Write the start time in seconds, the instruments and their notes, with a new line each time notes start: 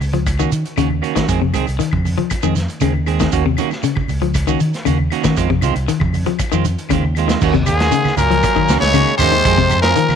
0.01 fingered electric bass C#2, muted clean electric guitar stroke, open hi-hat, shekere
0.13 clean electric guitar F3, muted clean electric guitar stroke, closed hi-hat, high conga
0.26 kick, closed hi-hat, claves, shekere
0.39 clean electric guitar D#3 A#3 C#4 F#4, shekere
0.52 fingered electric bass D#3, closed hi-hat, shekere
0.65 closed hi-hat, shekere
0.77 fingered electric bass D#2, clean electric guitar C#3 D#3 A#3 C#4 F#4, closed hi-hat, high conga, claves, shekere
0.90 muted clean electric guitar stroke, high conga
1.02 clean electric guitar D#3 A#3 C#4 F#4, closed hi-hat, claves, shekere
1.15 clean electric guitar D#3 A#3 C#4 F#4, fingered electric bass D#3, kick, snare, closed hi-hat, shekere
1.28 fingered electric bass F2, clean electric guitar D#3 G#3 C4 G#4, kick, closed hi-hat, shekere
1.41 clean electric guitar C3, muted clean electric guitar stroke
1.54 fingered electric bass C2, clean electric guitar D#3 G#3 C4 G#4, closed hi-hat, high conga, claves, shekere
1.67 fingered electric bass C2, muted clean electric guitar stroke, closed hi-hat, shekere
1.79 clean electric guitar D#3, muted fingered electric bass stroke, muted clean electric guitar stroke, closed hi-hat, shekere
1.91 fingered electric bass F2, muted clean electric guitar stroke, kick, high conga, claves
2.05 muted clean electric guitar stroke, open hi-hat, high conga, shekere
2.18 clean electric guitar F3, muted clean electric guitar stroke, closed hi-hat, high conga
2.30 muted fingered electric bass stroke, kick, closed hi-hat, claves, shekere
2.43 fingered electric bass F2, clean electric guitar D#3 G#3 C4 G#4, shekere
2.56 muted clean electric guitar stroke, snare, closed hi-hat, shekere
2.68 closed hi-hat, shekere
2.81 fingered electric bass D#2, clean electric guitar C#3 D#3 G#3 C4 G#4, closed hi-hat, high conga, claves, shekere
2.94 muted clean electric guitar stroke, high conga
3.06 clean electric guitar D#3 G#3 C4 G#4, closed hi-hat, claves, shekere
3.19 clean electric guitar D#3 G#3 C4 G#4, kick, snare, closed hi-hat, shekere
3.32 fingered electric bass D#2, clean electric guitar D#3 A#3 C#4 F#4, kick, closed hi-hat, shekere
3.46 clean electric guitar C3, muted clean electric guitar stroke
3.57 clean electric guitar D#3 A#3 C#4 F#4, closed hi-hat, high conga, claves, shekere
3.71 muted clean electric guitar stroke, snare, shekere
3.83 clean electric guitar C#3, muted clean electric guitar stroke, closed hi-hat, shekere
3.95 muted clean electric guitar stroke, muted fingered electric bass stroke, kick, high conga, claves
4.08 fingered electric bass C#2, muted clean electric guitar stroke, open hi-hat, high conga, shekere
4.22 clean electric guitar F3, muted clean electric guitar stroke, closed hi-hat, high conga
4.34 kick, closed hi-hat, claves, shekere
4.47 clean electric guitar D#3 A#3 C#4 F#4, shekere
4.60 fingered electric bass D#3, muted clean electric guitar stroke, closed hi-hat, shekere
4.73 snare, closed hi-hat, shekere
4.85 fingered electric bass D#2, clean electric guitar C#3 D#3 A#3 C#4 F#4, closed hi-hat, high conga, claves, shekere
4.98 muted clean electric guitar stroke, high conga
5.10 clean electric guitar D#3 A#3 C#4 F#4, closed hi-hat, claves, shekere
5.24 clean electric guitar D#3 A#3 C#4 F#4, fingered electric bass D#3, kick, snare, closed hi-hat, shekere
5.37 fingered electric bass F2, clean electric guitar D#3 G#3 C4 F4, kick, closed hi-hat, shekere
5.50 clean electric guitar C3, muted clean electric guitar stroke, kick
5.61 fingered electric bass C2, clean electric guitar D#3 G#3 C4 F4, closed hi-hat, high conga, claves, shekere
5.75 fingered electric bass C2, muted clean electric guitar stroke, closed hi-hat, shekere
5.88 clean electric guitar D#3, muted clean electric guitar stroke, muted fingered electric bass stroke, closed hi-hat, shekere
6.00 fingered electric bass F2, muted clean electric guitar stroke, kick, high conga, claves
6.13 muted clean electric guitar stroke, open hi-hat, high conga, shekere
6.26 clean electric guitar F3, muted clean electric guitar stroke, closed hi-hat, high conga
6.39 muted fingered electric bass stroke, kick, closed hi-hat, claves, shekere
6.52 fingered electric bass F2, clean electric guitar D#3 G#3 C4 F4, shekere
6.65 muted clean electric guitar stroke, closed hi-hat, shekere
6.78 closed hi-hat, shekere
6.89 fingered electric bass D#2, clean electric guitar C#3 D#3 G#3 C4 F4, kick, closed hi-hat, high conga, claves, shekere
7.02 muted clean electric guitar stroke, high conga
7.15 clean electric guitar D#3 G#3 C4 F4, closed hi-hat, claves, shekere
7.28 clean electric guitar D#3 G#3 C4 F4, snare, closed hi-hat, shekere
7.41 fingered electric bass D#2, clean electric guitar D#3 A#3 C#4 F#4, kick, crash, shekere
7.54 clean electric guitar C3, muted clean electric guitar stroke, kick, shekere
7.66 fingered electric bass D#2, baritone saxophone G#2, trombone D#3, trumpet G#4, muted clean electric guitar stroke, closed hi-hat, high conga, low conga, claves, shekere
7.79 clean electric guitar A#3 C#4 F#4, snare, closed hi-hat, shekere
7.92 clean electric guitar C#3, muted clean electric guitar stroke, closed hi-hat, shekere
8.05 muted clean electric guitar stroke, snare, high conga, claves, shekere
8.16 fingered electric bass C#2, baritone saxophone A#2, trombone F#3, trumpet A#4, muted clean electric guitar stroke, closed hi-hat, high conga, low conga, shekere
8.31 clean electric guitar F3, muted clean electric guitar stroke, closed hi-hat, shekere
8.43 kick, closed hi-hat, claves, shekere
8.56 clean electric guitar D#3, kick, shekere
8.69 fingered electric bass C#2, clean electric guitar D#3 A#3 C#4 F#4, snare, closed hi-hat, shekere
8.79 fingered electric bass C#2, baritone saxophone C#3, trombone G#3, trumpet C#5, muted clean electric guitar stroke, snare, shekere
8.94 clean electric guitar C#3 D#3 A#3 C#4 F#4, closed hi-hat, high conga, claves, shekere
9.07 shekere
9.17 fingered electric bass D#2, baritone saxophone C3, clean electric guitar D#3, trombone G#3, trumpet C5, closed hi-hat, high conga, low conga, claves, shekere
9.21 clean electric guitar A#3 C#4 F#4
9.32 clean electric guitar D#3, shekere
9.45 fingered electric bass F2, clean electric guitar D#3 G#3 C4 G#4, kick, closed hi-hat, shekere
9.58 clean electric guitar C3, muted clean electric guitar stroke, kick, shekere
9.70 fingered electric bass F2, muted clean electric guitar stroke, closed hi-hat, high conga, low conga, claves, shekere
9.81 baritone saxophone A#2, trombone F3, clean electric guitar G#4, trumpet A#4, snare, closed hi-hat, shekere
9.86 clean electric guitar G#3 C4
9.96 clean electric guitar D#3, muted clean electric guitar stroke, closed hi-hat, shekere
10.09 muted clean electric guitar stroke, snare, high conga, claves, shekere